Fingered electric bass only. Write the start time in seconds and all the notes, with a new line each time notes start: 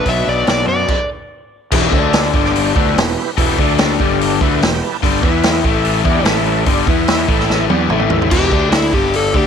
0.06 B1
0.27 B1
0.48 B1
0.66 F#2
1.72 E1
1.93 D2
2.34 G1
2.76 D2
2.96 E1
3.37 E1
3.59 D2
4.00 G1
4.41 D2
4.61 E1
5.03 G1
5.23 E2
5.64 A1
6.05 E2
6.25 A1
6.66 G1
6.87 E2
7.28 A1
7.70 E2
7.89 A1
8.31 E1
8.52 D2
8.94 G1
9.34 D2